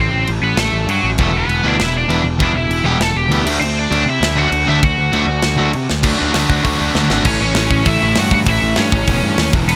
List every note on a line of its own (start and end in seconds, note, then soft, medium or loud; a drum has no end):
0.00 0.25 C4 medium
0.00 0.28 C5 medium
0.13 0.25 A1 medium
0.27 0.40 A1 loud
0.27 crash medium
0.42 0.54 A1 medium
0.42 0.57 B3 medium
0.42 0.58 B4 medium
0.56 0.69 A1 medium
0.56 0.86 A3 medium
0.56 0.86 A4 medium
0.56 snare loud
0.56 crash medium
0.72 0.85 A1 medium
0.87 1.00 G2 medium
0.87 1.10 F#3 medium
0.87 1.10 F#4 medium
0.87 crash medium
1.03 1.15 A1 medium
1.18 1.43 E1 medium
1.18 1.30 E2 medium
1.18 1.31 B2 medium
1.18 1.30 E3 medium
1.18 1.30 G3 loud
1.18 1.34 A3 medium
1.18 1.31 B3 loud
1.18 1.31 E4 loud
1.18 kick loud
1.18 crash medium
1.22 1.37 A4 medium
1.37 1.63 B3 medium
1.37 1.66 B4 medium
1.48 1.60 E1 medium
1.48 crash medium
1.63 1.76 D2 medium
1.63 1.76 E2 medium
1.63 1.76 B2 medium
1.63 1.75 E3 medium
1.63 1.76 G3 medium
1.63 1.76 B3 loud
1.63 1.76 E4 loud
1.67 1.80 D4 medium
1.67 1.81 D5 medium
1.79 2.04 E1 loud
1.79 1.95 E4 medium
1.79 1.95 E5 medium
1.79 snare loud
1.79 crash medium
1.97 2.24 D4 medium
1.97 2.24 D5 medium
2.08 2.21 E1 medium
2.08 2.21 E2 medium
2.08 2.21 B2 medium
2.08 2.21 E3 medium
2.08 2.21 G3 medium
2.08 2.21 B3 medium
2.08 2.22 E4 medium
2.08 crash medium
2.24 2.37 E1 medium
2.38 2.52 E1 medium
2.38 2.51 E2 medium
2.38 2.51 B2 medium
2.38 2.51 E3 loud
2.38 2.52 G3 loud
2.38 2.52 B3 loud
2.38 2.52 E4 loud
2.38 kick loud
2.38 crash medium
2.44 2.56 D4 medium
2.44 2.55 D5 loud
2.54 2.67 E1 medium
2.54 2.83 E4 medium
2.54 2.86 E5 loud
2.69 2.82 E1 loud
2.69 crash medium
2.84 2.97 E1 medium
2.84 2.97 E2 medium
2.84 2.97 B2 medium
2.84 2.97 E3 medium
2.84 2.97 G3 medium
2.84 2.97 B3 medium
2.84 2.97 E4 loud
2.84 2.99 G4 medium
2.84 3.02 G5 medium
2.98 3.12 E1 medium
2.98 3.17 A5 loud
2.98 snare loud
2.98 crash medium
3.03 3.16 A4 medium
3.15 3.27 E1 medium
3.15 3.44 G4 medium
3.15 3.46 G5 loud
3.29 3.42 D2 medium
3.29 3.42 E2 medium
3.29 3.42 B2 medium
3.29 3.43 E3 medium
3.29 3.43 G3 medium
3.29 3.43 B3 medium
3.29 3.43 E4 medium
3.29 crash medium
3.45 3.58 D2 loud
3.45 3.58 D3 loud
3.45 3.58 F#3 loud
3.45 3.58 A3 loud
3.45 3.58 D4 loud
3.45 crash loud
3.60 3.85 D2 medium
3.60 3.75 C4 medium
3.60 3.77 C5 medium
3.60 crash medium
3.79 4.06 D4 medium
3.79 4.09 D5 loud
3.91 4.04 D2 loud
3.91 4.03 D3 medium
3.91 4.03 F#3 loud
3.91 4.03 A3 medium
3.91 4.04 D4 loud
3.91 crash medium
4.06 4.18 C3 medium
4.10 4.37 E4 medium
4.10 4.36 E5 loud
4.21 4.46 D2 loud
4.21 snare loud
4.21 crash medium
4.36 4.48 D3 loud
4.36 4.49 F#3 medium
4.36 4.49 A3 loud
4.36 4.49 D4 loud
4.36 4.66 F#4 medium
4.36 4.66 F#5 loud
4.52 4.64 D2 medium
4.52 crash medium
4.67 4.80 D2 medium
4.67 4.79 D3 loud
4.67 4.79 F#3 loud
4.67 4.79 A3 loud
4.67 4.80 D4 loud
4.67 4.83 E4 medium
4.67 4.84 E5 loud
4.83 4.95 D2 loud
4.83 5.71 F#4 medium
4.83 5.70 F#5 medium
4.83 kick loud
4.83 crash medium
4.98 5.10 D2 medium
5.13 5.25 D2 medium
5.13 5.25 D3 medium
5.13 5.25 F#3 medium
5.13 5.25 A3 medium
5.13 5.25 D4 loud
5.13 crash medium
5.27 5.40 D2 medium
5.42 5.56 D2 medium
5.42 snare loud
5.42 crash soft
5.58 5.71 D2 medium
5.58 5.70 D3 medium
5.58 5.70 F#3 medium
5.58 5.71 A3 medium
5.58 5.71 D4 loud
5.73 5.87 C3 medium
5.73 crash medium
5.90 6.02 D2 medium
5.90 snare medium
6.03 6.14 D2 medium
6.03 6.18 D3 loud
6.03 6.18 F#3 loud
6.03 6.18 A3 loud
6.03 6.17 D4 loud
6.03 6.17 F#4 loud
6.03 kick loud
6.03 crash loud
6.18 6.30 D2 medium
6.18 6.34 D3 medium
6.18 6.34 F#3 medium
6.18 6.34 A3 medium
6.18 6.35 D4 medium
6.18 6.35 F#4 medium
6.34 6.44 D2 loud
6.34 6.49 D3 medium
6.34 6.49 F#3 medium
6.34 6.49 A3 loud
6.34 6.49 D4 medium
6.34 6.48 F#4 loud
6.34 snare loud
6.34 open hi-hat medium
6.49 6.59 D2 medium
6.49 6.62 D3 medium
6.49 6.63 F#3 medium
6.49 6.63 A3 medium
6.49 6.63 D4 medium
6.49 6.64 F#4 medium
6.49 kick medium
6.64 6.74 D2 loud
6.64 6.78 D3 medium
6.64 6.78 F#3 loud
6.64 6.78 A3 loud
6.64 6.78 D4 loud
6.64 6.77 F#4 loud
6.64 kick medium
6.64 open hi-hat medium
6.78 6.89 D2 medium
6.78 6.93 D3 medium
6.78 6.94 F#3 medium
6.78 6.94 A3 medium
6.78 6.94 D4 medium
6.78 6.95 F#4 loud
6.94 7.04 D2 loud
6.94 7.09 D3 medium
6.94 7.09 F#3 medium
6.94 7.08 A3 medium
6.94 7.08 D4 loud
6.94 7.08 F#4 medium
6.94 snare medium
7.09 7.19 G#1 medium
7.09 7.25 D3 medium
7.09 7.25 F#3 medium
7.09 7.24 A3 medium
7.09 7.24 D4 loud
7.09 7.24 F#4 loud
7.09 snare medium
7.24 7.36 A1 loud
7.24 7.83 A2 medium
7.24 7.86 E3 medium
7.24 7.86 A3 loud
7.24 7.40 C#4 medium
7.24 7.40 C#5 medium
7.24 kick loud
7.24 crash loud
7.41 7.52 A1 medium
7.41 7.83 C#4 medium
7.41 7.88 C#5 loud
7.55 7.67 A1 loud
7.55 snare loud
7.55 open hi-hat medium
7.71 7.82 A1 loud
7.71 kick medium
7.85 7.97 A1 loud
7.85 8.43 A2 medium
7.85 8.46 E3 medium
7.85 8.46 A3 loud
7.85 8.00 E4 medium
7.85 8.02 E5 medium
7.85 kick loud
7.85 open hi-hat medium
8.02 8.13 A1 medium
8.02 8.16 E4 medium
8.02 8.16 E5 loud
8.15 8.28 G2 loud
8.15 8.32 F#4 medium
8.15 snare loud
8.15 open hi-hat medium
8.20 8.33 F#5 loud
8.31 8.43 G2 loud
8.31 8.39 F#4 medium
8.31 8.39 F#5 loud
8.31 kick medium
8.45 8.58 A1 loud
8.45 9.05 A2 medium
8.45 9.08 E3 medium
8.45 9.07 A3 medium
8.45 kick loud
8.45 open hi-hat medium
8.49 8.76 E4 medium
8.49 8.80 E5 loud
8.62 8.73 A1 loud
8.76 8.89 G2 loud
8.76 9.48 C#4 medium
8.76 9.49 C#5 loud
8.76 snare loud
8.76 open hi-hat medium
8.92 9.03 A1 loud
8.92 kick medium
9.06 9.19 E1 loud
9.06 9.51 A2 medium
9.06 9.54 E3 medium
9.06 9.53 A3 loud
9.06 kick medium
9.06 open hi-hat medium
9.23 9.34 G2 medium
9.38 9.49 D#2 loud
9.38 snare loud
9.38 open hi-hat medium
9.50 9.65 E1 loud
9.50 9.76 E2 loud
9.50 9.76 B2 loud
9.50 9.76 E3 loud
9.50 kick loud
9.66 9.76 E1 loud
9.66 9.76 B3 medium
9.66 crash loud
9.71 9.76 B4 loud